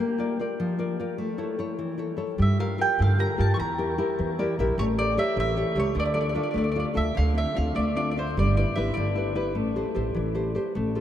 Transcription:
0.00 A#3
0.18 F4 A#4 D5
0.39 F4 A#4 D5
0.60 F3
0.79 F4 A#4 D5
1.00 F4 A#4 D5
1.18 A3
1.38 E4 A4 C#5
1.59 E4 A4 C#5
1.79 E3
1.98 E4 A4 C#5
2.17 E4 A4 C#5
2.38 G2 G3 E5
2.59 F4 G4 A#4 F5
2.78 F4 G4 A#4 G5
2.99 G2 D3 F5
3.18 F4 G4 A#4 A#5
3.38 G2 F4 G4 A#4 A5
3.54 E3 C#6
3.60 E2 A#5
3.78 E4 G4 A#4
3.98 E4 G4 A#4
4.19 E2 E3
4.39 E4 G4 A#4 D5
4.59 A#1 E4 G4 A#4 E5
4.78 A1 A3 C#5
4.99 G4 A4 C#5 D5
5.17 G4 A4 C#5 E5
5.36 A1 E3 E5
5.56 G4 A4 C#5
5.75 C#2 G4 A4 C#5
5.80 C#5
5.95 D2 D3
6.00 D5
6.06 D5
6.14 D4 F4 A4 D5
6.21 D5
6.29 D5
6.35 D4 F4 A4 D5
6.43 D5
6.51 A3 D5
6.56 D2 D5
6.64 D5
6.72 D4 D5
6.76 F4 A4 D5
6.94 D2 D4 F4 A4 E5
7.15 D2 D3 F5
7.34 C4 D4 F4
7.38 E5
7.55 D2 C4 D4 F4 F5
7.75 D2 A3 D5
7.96 C4 D4 F4 D5
8.11 D5
8.16 C4 D4 F4 C5
8.37 G1 G3 D5
8.57 E4 G4 B4 D5
8.76 G1 E4 G4 B4 E5
8.94 G1 D3 D5
9.16 E4 G4 B4
9.35 E4 G4 B4
9.55 A1 A3
9.76 G4 A4 C5
9.95 A1 G4 A4 C5
10.15 A1 E3
10.35 G4 A4 C5
10.55 G4 A4 C5
10.75 A1 A3
10.95 F4 G4 A4

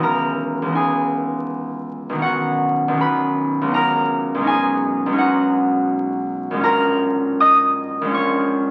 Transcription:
Already playing: C#2 E3 B3 G#4 B4 C#5 G#5 B5
0.00 D#4 A#4 A#5
0.62 C#2 E3
0.68 B3
0.72 D#4 G#5
0.76 G#4
2.09 B1 D#3
2.15 B3 C#4
2.22 F#4 F#5
2.88 B1 D#3
2.94 B3 C#4
3.01 B4 B5
3.61 C#2 F#3
3.68 B3 D#4
3.74 A#4 A#5
4.35 B1 G#3
4.41 C#4 D#4
4.47 G#4 G#5
5.06 B1 G#3
5.12 C#4 D#4
5.18 F#4 F#5
6.51 A#1 G#3
6.57 C#4 F4
6.64 A#4 A#5
7.40 D#5 D#6
8.01 A#1 G#3
8.08 C#4 F4
8.14 C#5 C#6

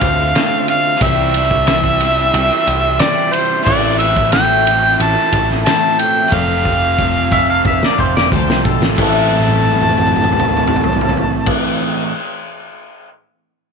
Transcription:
Already playing: D3 A3 D4 F4 F5
0.01 D2 A3 C4 F4 C5, kick, ride
0.35 D3 A3 C4 F4 C5, snare, ride
0.68 A3 C4 F4 C5 F5, ride
0.97 C3 E3 G3 C4 E4
1.01 C2 C3 E3 G3 D4 E4 E5, kick, ride
1.05 C5
1.34 G3 D4, ride
1.38 E4 C5
1.51 kick
1.67 C3 E3 G3 D4 E4 C5, snare, ride
1.84 kick
2.00 G3 D4 E4, ride
2.04 C5
2.19 G3 D4 E4 C5
2.34 C2, ride
2.52 G3 D4 E4 C5
2.67 C2 G3 D4 E4 C5, ride
2.99 C3 E3 G3 D4 E4 C5 D5, snare, ride
3.32 C5, ride
3.37 G3 D4 E4 C5
3.63 A1 A2 E3 A3 C4 E4 D5, kick
3.67 A2 E3 C4, crash
3.71 A3 E4 A4
3.99 A3 E5, ride
4.04 C4 E4 A4
4.16 kick
4.32 G5, snare, ride
4.37 A2 E3 A3 C4 E4 A4
4.67 A3 C4 E4, ride
4.71 A4
4.85 A3 C4 E4 A4
5.00 A1 A5, ride
5.18 A3 C4 E4 A4
5.33 A1 A3 C4 E4 A4, kick, ride
5.50 snare
5.65 A2 E3 A3 C4 E4 A4 A5, snare, ride
5.99 A3 C4 E4 A4 G5, ride
6.28 F2 C3 F3 A3 C4 F4
6.32 F1 F3 G3 C4 F4 A4 F5, kick
6.65 G3 C4 F4 A4, kick
6.99 F3 G3 C4 F4 A4, kick
7.32 G3 C4 F4 A4 E5, kick
7.50 C4 F4 A4 F5
7.65 F1 E5, kick
7.83 C4 F4 A4 D5, snare
7.98 F1 G3 C4 F4 A4 C5, kick
8.17 D5, snare
8.32 D2 F3 G3 C4 F4 A4 C5, kick
8.48 C2, snare
8.64 B1 G3 C4 F4 A4, kick
8.81 A1, snare
8.95 A1 A2 E3 C4 A5, kick, crash
8.99 A3 C4 E4 A4
9.04 E4 A4
9.31 high tom
9.40 high tom
9.49 high tom
9.57 high tom
9.65 high tom
9.73 high tom
9.81 mid tom
9.89 mid tom
9.98 mid tom
10.07 mid tom
10.16 mid tom
10.24 mid tom
10.32 mid tom
10.40 mid tom
10.49 mid tom
10.57 mid tom
10.68 mid tom
10.76 mid tom
10.84 floor tom
10.93 floor tom
11.01 floor tom
11.09 floor tom
11.17 floor tom
11.46 kick, crash

